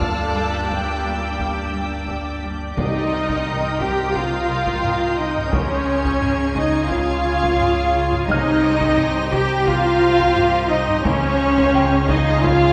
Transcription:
Already playing: D2 D4 D5 D6 E6 F6
0.00 G1 G2 A#3 G4 A4 G5 A5, taiko
0.07 F#6
0.35 G2 A4 A5
0.67 G2 G4 G5, taiko
1.04 G2
1.38 G2, taiko
1.73 G3
2.08 G3, taiko
2.44 G3
2.75 C2 C3 D#4 A#4 D#5 G5 C6, taiko
3.12 C3 D#5
3.29 taiko
3.46 C3 G6, taiko low-mid
3.79 C3 G4 G5, taiko
4.14 C3 F4 F5, taiko
4.50 C3
4.67 taiko
4.84 C3, taiko low-mid
5.16 C3 D#4 D#5
5.36 taiko low-mid
5.51 C#2 C#3 C#4 G#4 C#5, taiko
5.55 G#5
5.87 C#3
6.05 taiko
6.22 C#3, taiko low-mid
6.55 C#3 D#4 D#5, taiko
6.80 G#6
6.89 C#3 F4 F5, taiko
7.25 C#3
7.42 taiko
7.60 C#3, taiko low-mid
7.95 C#3
8.12 taiko low-mid
8.28 C2 C3 D#4 G4 C5 D#5 A#5 C6 F6 G6, taiko
8.64 C3
8.81 taiko
8.98 C3, taiko low-mid
9.32 C3 G4 G5, taiko
9.67 C3 F4 F5, taiko
10.01 C3
10.20 taiko
10.36 C3, taiko low-mid
10.69 C3 D#4 D#5
10.88 taiko low-mid
11.04 C#2 C#3 C#4 G#4 C#5 F5, taiko
11.40 C#3
11.57 taiko
11.74 C#3 G5, taiko low-mid
12.07 C#3 D#4 D#5, taiko
12.42 C#3 F4 F5, taiko

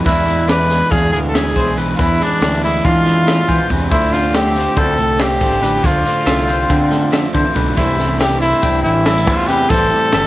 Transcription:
0.05 E2 E3 G#3 B3 D4 E4 G#4 B4, kick, closed hi-hat
0.27 G#3 B3 D4 G#4, closed hi-hat
0.48 E3 B3 D4 G#4 B4 D5, snare, closed hi-hat
0.69 G#3 B3 D4 G#4 B4, snare, closed hi-hat
0.91 E2 D4 G#4 F5, kick, closed hi-hat
1.13 D2 E3 G#4, closed hi-hat
1.29 A4
1.34 E3 G#3 B3 D4 G#4 E5, snare, closed hi-hat
1.55 B1 E3 B3 D4 G#4 C5, kick, closed hi-hat
1.77 E2 E3 B3 D4 G#4 B4, closed hi-hat
1.95 E2 E3 F4 B4, kick, closed hi-hat
1.99 B3 D4 E4 G#4
2.20 G#3 B3 D4 G#4, snare, closed hi-hat
2.41 D2 E3 B3 D4 G#4 D5, snare, closed hi-hat
2.62 G#3 B3 D4 E4 G#4 B4, closed hi-hat
2.85 E3 D4 F4 F5, kick, snare, closed hi-hat
3.06 E3, snare, closed hi-hat
3.27 A2 E3 B3 D4 G#4 E5, snare, closed hi-hat
3.48 B2 E3 B3 D4 G#4 C5, kick, closed hi-hat
3.69 E2 C3 E3 B3 D4 G#4 B4, kick, closed hi-hat
3.90 D2 D3 A3 D4 E4 F4 C5, kick, closed hi-hat
4.11 A3 C4 D4 F4, snare, closed hi-hat
4.32 D3 A3 D4 F4 G4 E5, snare, closed hi-hat
4.54 A3 C4 D4 F4 C5, closed hi-hat
4.77 D2 A4 G5, kick, closed hi-hat
4.98 C2 A3, closed hi-hat
5.18 D3 A3 C4 D4 F4 G4 E5, snare, closed hi-hat
5.40 A1 A3 D4 F4 C5, kick, closed hi-hat
5.62 D3 A3 D4 F4 B4, closed hi-hat
5.83 D2 D3 A3 D4 F4 C5, kick, closed hi-hat
6.05 A3 C4 D4 F4, closed hi-hat
6.26 C2 D3 A3 D4 F4 E5, snare, closed hi-hat
6.47 A3 C4 D4 F4 C5, closed hi-hat
6.70 D3 C4 G5, kick, closed hi-hat
6.91 A3, snare, closed hi-hat
7.11 D3 F3 A3 D4 F4 E5, snare, closed hi-hat
7.33 D3 E3 A3 D4 F4 C5, kick, closed hi-hat
7.55 B1 D3 A3 D4 F4 B4, kick, closed hi-hat
7.76 C2 C3 E3 G3 A3 C4 D4 E4 C5, kick, closed hi-hat
7.97 G3 A3 C4 E4, snare, closed hi-hat
8.19 C3 E3 G3 C4 E4 G4 E5, snare, closed hi-hat
8.41 G3 A3 C4 E4 C5, closed hi-hat
8.63 C2 D4 G5, kick, closed hi-hat
8.83 A1 E3 E4, closed hi-hat
9.05 E3 G3 C4 E4 E5, snare, closed hi-hat
9.18 A3
9.26 E2 E3 G3 C4 E4 C5, kick, snare, closed hi-hat
9.37 F4
9.47 C3 E3 G3 C4 G4 B4, snare, closed hi-hat
9.52 E4
9.69 A1 A2 E3 G3 A3 C4 E4 A4 C5, kick, closed hi-hat
9.73 C4 G4
9.91 G3 A3 C4 E4, closed hi-hat
10.12 G1 A2 E3 A3 C4 E4 E5, snare, closed hi-hat

